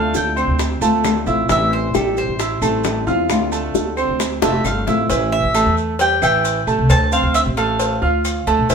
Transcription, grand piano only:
Already playing: A3 A4 A5
0.36 C4 C5 C6
0.81 A3 A4 A5
1.27 E4 E5 E6
1.49 E3 E4 E5
1.94 G3 G4 G5
2.39 E4 E5 E6
2.62 A3 A4 A5
3.07 F4 F5 F6
3.52 A3 A4 A5
3.97 C4 C5 C6
4.42 A3 A4 A5
4.87 E4 E5 E6
5.10 E3 E4 E5
5.54 A3 A4 A5
5.99 G3 G4 G5
6.22 E3 E4 E5
6.67 A3 A4 A5
7.12 C4 C5 C6
7.57 A3 A4 A5
8.02 F4 F5 F6
8.47 A3 A4 A5
8.69 E3 E4 E5

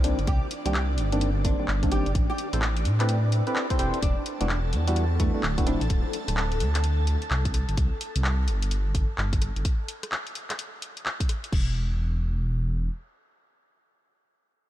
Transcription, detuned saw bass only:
Already playing: C2
0.19 G1
0.27 C2
0.66 C2
0.98 G1
1.68 G1
2.06 G1
2.15 A1
2.53 A1
2.85 A2
3.79 E1
4.03 E1
4.41 E1
4.73 E2
5.43 D1
5.81 A1
5.90 D1
6.28 D1
6.60 D2
7.31 C2
7.69 G1
7.77 C2
8.16 C2
8.48 G1
9.18 G1
9.56 G1
11.53 E1

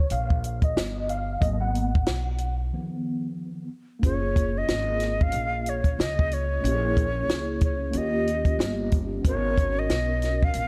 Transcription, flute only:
4.04 C#5
4.58 D#5
5.22 F5
5.69 C#5
6.00 D#5
6.33 C#5
7.64 C#5
7.97 D#5
9.27 C#5
9.79 D#5
10.44 F5

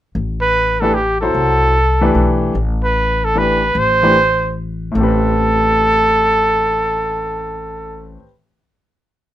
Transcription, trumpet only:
0.41 B4
0.81 A4
0.94 G4
1.21 A4
2.84 B4
3.24 A4
3.38 B4
3.78 C5
4.97 A4

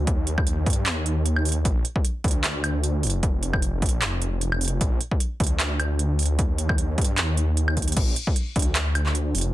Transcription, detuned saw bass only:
0.07 D#2
0.66 G2
0.86 D#2
1.65 A#1
2.24 D2
3.03 F1
3.82 A#1
4.02 F1
4.81 A#1
5.40 D2
6.39 D#2
6.98 G2
7.18 D#2
7.97 A#1
8.56 D2
9.35 F1

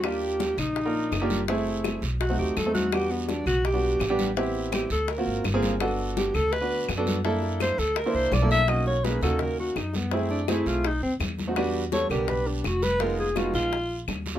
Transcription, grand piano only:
0.04 A#3 D4 F4 G4
0.85 A#3 D4 F4 A#4
1.21 A#3 D4 F4 G4
1.49 A3 C4 E4 G#4
2.29 A3 C4 D#4 F#4
2.66 A3 C4 D#4 A4
2.93 G3 B3 D4 F#4
3.74 G3 B3 D4 F#4
4.10 G3 B3 D4 G4
4.37 B3 C4 E4 G4
5.18 A#3 C4 F4 F#4
5.54 A#3 C4 F4 G#4
5.81 B3 D4 F#4 A4
6.61 B3 D4 F#4 B4
6.98 B3 D4 F#4 A4
7.25 A#3 D4 E4 A4
8.06 A#3 D4 E4 C5
8.42 A#3 D4 E4 A4
8.69 A#3 C#4 D#4 F#4
9.04 A#3 C#4 D#4 G#4
9.22 A#3 C#4 D#4 F#4
10.13 A3 C4 E4 G#4
10.49 A3 C4 E4 G#4
11.47 A3 C4 D#4 F#4
11.57 G3 B3 D4 F#4
11.93 G3 B3 D4 A4
12.11 G3 B3 D4 G4
13.01 G#3 B3 D#4 F4
13.36 G#3 B3 D#4 F4
14.35 F#3 G#3 D4 F4

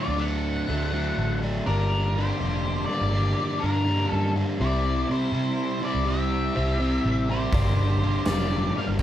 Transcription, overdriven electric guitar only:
Already playing: D3 F#3 A3 D4
0.17 D3 F#3 A3 D4
0.69 D3 F#3 A3 D4
0.93 D3 F#3 A3 D4
1.42 D3 F#3 A3 D4
1.65 G2 D3 G3 A#3 D4
2.16 G2 D3 G3 A#3 D4
2.38 G2 D3 G3 A#3 D4
2.88 G2 D3 G3 A#3 D4
3.12 G2 D3 G3 A#3 D4
3.62 G2 D3 G3 A#3 D4
3.85 G2 D3 G3 A#3 D4
4.35 G2 D3 G3 A#3 D4
4.59 C3 G3 C4 E4
5.08 C3 G3 C4 E4
5.32 C3 G3 C4 E4
5.82 C3 G3 C4 E4
6.05 C3 G3 C4 E4
6.54 C3 G3 C4 E4
6.79 C3 G3 C4 E4
7.29 C3 G3 C4 E4
7.52 G2 D3 G3 A#3 D4
8.02 G2 D3 G3 A#3 D4
8.26 G2 D3 G3 A#3 D4
8.76 G2 D3 G3 A#3 D4

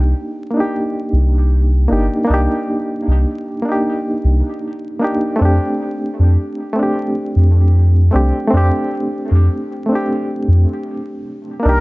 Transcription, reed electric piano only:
Already playing: A#3 D4 D#4 G4
0.50 A#3 D4
0.57 D#4 G4
1.88 A#3 D4 D#4
1.93 G4
2.24 A#3 D4
2.31 D#4 G4
3.62 A#3 D4
3.69 D#4 G4
5.00 A#3 D4 D#4
5.04 G4
5.36 A3 C4
5.42 D4 G4
6.73 A3 C4
6.79 D4 G4
8.11 A3 C4 D4
8.16 G4
8.47 A3 C4
8.54 D4 G4
9.86 A3 C4
9.92 D4 G4
11.60 A#3 D4
11.66 D#4 G4

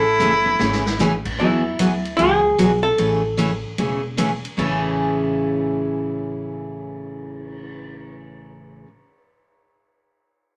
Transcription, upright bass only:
Already playing: A1
0.20 F#1
0.59 G#1
0.99 A1
1.40 E2
1.79 D2
2.19 C#2
2.59 B1
2.99 A1
3.78 E1
4.58 A1

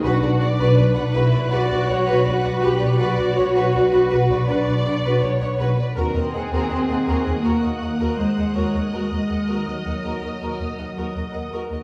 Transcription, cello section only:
0.04 D4
1.14 E4
1.52 F#4
2.63 G4
3.00 F#4
4.47 D4
5.96 C4
7.44 A#3
8.18 G#3
8.92 G#3
9.66 F#3

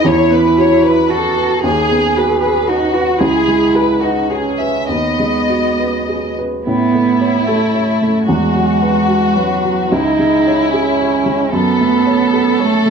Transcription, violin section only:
0.06 C#5
0.32 B4
0.58 C#5
0.85 B4
1.10 A4
1.62 G#4
2.16 B4
2.42 B4
2.68 F#4
3.20 G#4
3.75 B4
4.02 F#4
4.32 G#4
4.59 E5
4.89 D#5
6.66 E4
8.28 F#4
9.91 E4
11.53 A4

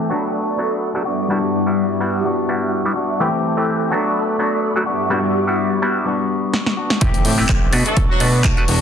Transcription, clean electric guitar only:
Already playing: E3 A3 C4
0.09 D4 F#4
0.13 A3
1.05 B3 D4 F#4
1.28 G3 B3 D4
1.32 F#4
2.24 G3 B3 D4 F#4
2.96 B3 D4 F#4
3.20 E3 A3 C4 G4
3.91 D4 F#4
3.95 A3
4.86 B3 D4 F#4
5.10 G3 B3 D4
5.14 F#4
6.05 G3 B3 D4 F#4
6.77 B3 D4 F#4
7.01 E3 A3 C4 G4
7.25 E3 A3 C4 G4
7.38 A3 C4 G4
7.49 E3 A3 C4 G4
7.72 A3 D4 F#4
7.85 D4 F#4
8.09 D4 F#4
8.20 A3 D4 F#4
8.33 D4 F#4
8.44 A3 D4 F#4
8.57 D4 F#4
8.68 G3 B3 D4 F#4

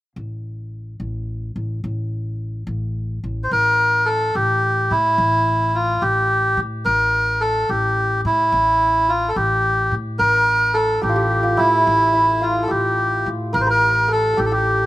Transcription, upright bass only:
0.16 A1
1.00 A1
1.56 A1
1.84 A1
2.67 A1
3.24 A1
3.51 A1
4.35 A1
4.91 A2
5.18 A1
6.02 A1
6.57 A2
6.86 A1
7.69 A1
8.25 A2
8.52 A1
9.36 A1
9.92 A2
10.19 A1
11.03 A1
11.59 A2
11.87 A1
12.71 A1
13.26 A2
13.54 A1
14.38 A1

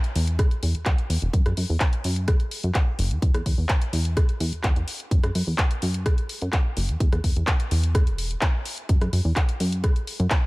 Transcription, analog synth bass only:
0.16 E2
0.63 E2
0.75 E2
0.86 E2
1.10 E2
1.22 E1
1.34 F#2
1.46 F#2
1.57 F#2
1.70 E2
2.05 F#2
2.64 F#2
2.99 F#1
3.11 E2
3.22 E2
3.34 E2
3.46 E2
3.58 E2
3.93 E2
4.40 E2
4.53 E2
4.64 E2
4.76 E2
5.11 F#2
5.24 F#2
5.35 F#2
5.47 E2
5.82 F#2
6.42 F#2
6.77 F#1
6.89 E2
7.00 E2
7.12 E2
7.24 E2
7.36 E2
7.71 E2
8.07 E1
8.89 F#2
9.01 F#2
9.13 F#2
9.25 E2
9.60 F#2
10.20 F#2

